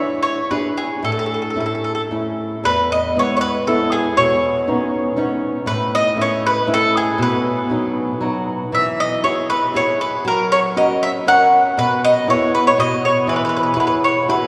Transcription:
0.00 0.40 D4 soft
0.00 0.40 E4 soft
0.00 0.41 G#4 soft
0.00 0.21 C#5 medium
0.23 0.48 C#5 medium
0.50 0.93 D4 soft
0.50 0.93 E4 soft
0.50 0.93 G#4 soft
0.50 0.78 B4 medium
0.77 1.02 G#4 medium
1.02 1.55 A2 medium
1.02 1.11 A4 medium
1.12 1.18 A4 soft
1.19 1.25 A4 soft
1.26 1.33 A4 soft
1.34 1.41 A4 soft
1.42 1.49 A4 soft
1.50 1.58 A4 soft
1.56 2.00 A3 soft
1.56 2.00 C#4 soft
1.56 2.00 E4 soft
1.60 1.65 A4 soft
1.66 1.74 A4 soft
1.75 1.83 A4 soft
1.84 1.91 A4 soft
1.95 2.01 A4 soft
2.11 2.54 A3 soft
2.11 2.54 C#4 soft
2.11 2.55 E4 soft
2.64 3.15 E2 medium
2.64 2.92 B4 medium
2.92 3.18 D#5 medium
3.15 3.57 G#3 soft
3.15 3.57 B3 soft
3.15 3.57 E4 soft
3.15 3.35 C#5 medium
3.37 3.41 C#5 medium
3.41 3.65 B4 medium
3.67 4.08 G#3 soft
3.67 4.08 B3 soft
3.67 4.08 E4 medium
3.67 3.94 A4 medium
3.92 4.18 G#4 medium
4.17 4.66 B2 medium
4.17 4.89 C#5 medium
4.68 5.07 B3 soft
4.68 5.08 C#4 soft
4.68 5.08 D#4 soft
5.16 5.56 B3 soft
5.16 5.57 C#4 soft
5.16 5.57 D#4 medium
5.66 6.15 A2 medium
5.66 5.91 B4 medium
5.95 6.16 D#5 loud
6.16 6.57 A3 soft
6.16 6.57 C#4 soft
6.16 6.58 E4 soft
6.21 6.45 C#5 medium
6.46 6.70 B4 medium
6.67 7.08 A3 soft
6.67 7.08 C#4 soft
6.67 7.08 E4 medium
6.74 6.95 A4 loud
6.97 7.21 G#4 medium
7.18 7.69 B2 medium
7.23 7.95 B4 medium
7.70 8.11 F#3 soft
7.70 8.12 B3 soft
7.70 8.12 D#4 medium
8.21 8.62 F#3 soft
8.21 8.63 B3 soft
8.21 8.63 D#4 soft
8.72 9.23 E3 medium
8.72 8.98 E5 medium
9.00 9.23 D#5 medium
9.23 9.64 E4 soft
9.23 9.65 F#4 soft
9.23 9.65 G#4 soft
9.23 9.48 C#5 medium
9.50 9.74 B4 medium
9.73 10.15 E4 soft
9.73 10.15 F#4 soft
9.73 10.16 G#4 medium
9.73 10.00 C#5 medium
10.01 10.27 B4 medium
10.25 10.74 F#3 medium
10.25 10.51 A#4 medium
10.52 10.59 C#5 medium
10.76 11.17 C#4 soft
10.76 11.17 F#4 soft
10.76 11.17 A#4 soft
10.76 11.01 D#5 medium
11.03 11.09 E5 medium
11.27 11.67 C#4 soft
11.27 11.67 F#4 soft
11.27 11.67 A#4 medium
11.27 11.63 F#5 medium
11.77 12.26 B2 medium
11.77 12.01 B4 medium
12.04 12.26 D#5 loud
12.27 12.68 B3 soft
12.27 12.68 E4 soft
12.27 12.68 G#4 soft
12.27 12.52 C#5 medium
12.55 12.65 B4 medium
12.67 12.79 C#5 medium
12.78 13.26 B2 medium
12.78 13.05 D#5 medium
13.05 13.27 C#5 medium
13.27 13.76 E3 medium
13.27 13.35 B4 medium
13.36 13.42 B4 medium
13.45 13.48 B4 medium
13.49 13.55 B4 medium
13.57 13.62 B4 medium
13.63 13.71 B4 soft
13.74 14.18 E4 soft
13.74 14.18 F#4 soft
13.74 14.18 G#4 soft
13.74 13.79 B4 medium
13.80 13.86 B4 medium
13.87 13.94 B4 medium
14.04 14.29 C#5 medium
14.28 14.47 E4 soft
14.28 14.47 F#4 soft
14.28 14.47 G#4 soft
14.28 14.47 B4 medium

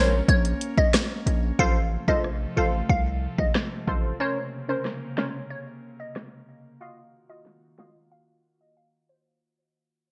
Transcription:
0.00 0.22 A#1 loud
0.00 1.57 A#3 medium
0.00 0.15 C#4 medium
0.00 1.57 C#4 medium
0.00 0.15 A#4 medium
0.00 0.15 C5 medium
0.00 0.23 C#5 medium
0.28 0.54 A#1 loud
0.28 0.42 C#5 medium
0.28 kick medium
0.28 closed hi-hat medium
0.45 closed hi-hat medium
0.61 closed hi-hat medium
0.78 0.92 D#5 medium
0.78 kick loud
0.94 cross-stick loud
0.94 snare loud
0.94 closed hi-hat medium
1.26 1.52 A#1 loud
1.26 closed hi-hat medium
1.59 1.97 A1 loud
1.59 6.77 C3 medium
1.59 4.17 F3 medium
1.59 4.17 A3 medium
1.59 1.78 F4 medium
1.59 1.78 A4 medium
1.59 1.78 C5 loud
1.59 1.87 F5 loud
1.59 kick loud
2.08 2.46 A#1 medium
2.08 2.27 F4 medium
2.08 2.27 A4 medium
2.08 2.27 C5 medium
2.08 2.36 D#5 medium
2.08 kick medium
2.24 cross-stick medium
2.56 2.82 A1 loud
2.56 2.76 F4 medium
2.56 2.76 A4 medium
2.56 2.76 C5 medium
2.56 2.85 F5 medium
2.89 3.28 C2 medium
2.89 3.03 F5 medium
2.89 kick medium
3.38 3.51 A1 medium
3.38 3.52 D#5 medium
3.38 kick medium
3.55 cross-stick loud
3.55 snare loud
3.87 4.13 A1 medium
3.87 4.17 F4 medium
3.87 4.17 A4 medium
3.87 4.18 C5 medium
3.87 kick medium
4.20 6.78 C#3 medium
4.20 9.38 A#3 medium
4.20 4.39 C#4 loud
4.20 4.39 A#4 medium
4.20 4.39 C5 loud
4.20 4.48 C#5 loud
4.69 4.88 C#4 medium
4.69 4.88 A#4 medium
4.69 4.96 C5 medium
4.69 4.88 C5 medium
4.85 cross-stick medium
4.85 snare medium
5.18 5.37 C#4 medium
5.18 5.37 A#4 medium
5.18 5.37 C5 medium
5.18 5.45 C#5 medium
5.18 snare loud
5.50 5.64 C#5 medium
6.00 6.13 D#5 medium
6.16 cross-stick loud
6.16 snare loud
6.81 9.39 D#3 medium
6.81 7.00 F4 medium
6.81 9.39 F4 medium
6.81 7.00 F#4 medium
6.81 9.39 F#4 medium
6.81 7.00 D#5 loud
6.81 7.08 F5 loud
7.29 7.49 F4 medium
7.29 7.49 F#4 medium
7.29 7.57 D#5 medium
7.29 7.49 D#5 medium
7.46 snare medium
7.78 7.98 F4 medium
7.78 7.98 F#4 medium
7.78 7.98 D#5 medium
7.78 8.06 F5 medium
7.78 snare loud
8.12 8.25 F5 medium
8.61 8.74 D#5 medium
8.77 8.90 F5 medium
9.09 9.23 C5 medium

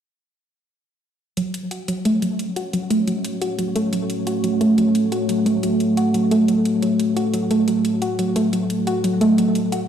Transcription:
1.37 1.47 F#3 medium
1.37 9.88 A3 medium
1.37 9.88 F#4 medium
1.37 6.80 C#5 medium
1.37 closed hi-hat medium
1.54 closed hi-hat medium
1.71 1.81 F#4 medium
1.71 closed hi-hat medium
1.88 2.03 F#3 medium
1.88 closed hi-hat medium
2.05 2.11 A3 medium
2.05 closed hi-hat medium
2.22 2.32 F#3 medium
2.22 closed hi-hat medium
2.39 closed hi-hat medium
2.56 2.66 F#4 medium
2.56 closed hi-hat medium
2.73 2.89 F#3 medium
2.73 closed hi-hat medium
2.90 2.96 A3 loud
2.90 closed hi-hat medium
3.07 3.18 F#3 medium
3.07 closed hi-hat medium
3.24 closed hi-hat medium
3.42 3.52 F#4 medium
3.42 closed hi-hat medium
3.59 3.74 F#3 medium
3.59 closed hi-hat medium
3.76 3.82 A3 loud
3.76 closed hi-hat medium
3.93 4.03 F#3 medium
3.93 closed hi-hat medium
4.10 closed hi-hat medium
4.27 4.37 F#4 medium
4.27 closed hi-hat medium
4.44 4.59 F#3 medium
4.44 closed hi-hat medium
4.61 4.67 A3 loud
4.61 closed hi-hat medium
4.78 4.88 F#3 medium
4.78 closed hi-hat medium
4.95 closed hi-hat medium
5.12 5.22 F#4 medium
5.12 closed hi-hat medium
5.29 5.44 F#3 medium
5.29 closed hi-hat medium
5.46 5.52 A3 loud
5.46 closed hi-hat medium
5.63 5.73 F#3 medium
5.63 closed hi-hat medium
5.80 closed hi-hat medium
5.97 6.07 F#4 medium
5.97 closed hi-hat medium
6.14 6.29 F#3 medium
6.14 closed hi-hat medium
6.31 6.37 A3 loud
6.31 closed hi-hat medium
6.48 6.58 F#3 medium
6.48 closed hi-hat medium
6.65 closed hi-hat medium
6.82 6.93 F#3 medium
6.82 9.88 A4 medium
6.82 closed hi-hat medium
7.00 closed hi-hat medium
7.16 7.27 F#4 medium
7.16 closed hi-hat medium
7.34 7.49 F#3 medium
7.34 closed hi-hat medium
7.51 7.57 A3 loud
7.51 closed hi-hat medium
7.68 7.78 F#3 medium
7.68 closed hi-hat medium
7.85 closed hi-hat medium
8.02 8.12 F#4 medium
8.02 closed hi-hat medium
8.19 8.34 F#3 medium
8.19 closed hi-hat medium
8.36 8.42 A3 loud
8.36 closed hi-hat medium
8.53 8.63 F#3 medium
8.53 closed hi-hat medium
8.70 closed hi-hat medium
8.87 8.97 F#4 medium
8.87 closed hi-hat medium
9.04 9.19 F#3 medium
9.04 closed hi-hat medium
9.21 9.27 A3 loud
9.21 closed hi-hat medium
9.38 9.48 F#3 medium
9.38 closed hi-hat medium
9.55 closed hi-hat medium
9.72 9.82 F#4 medium
9.72 closed hi-hat medium

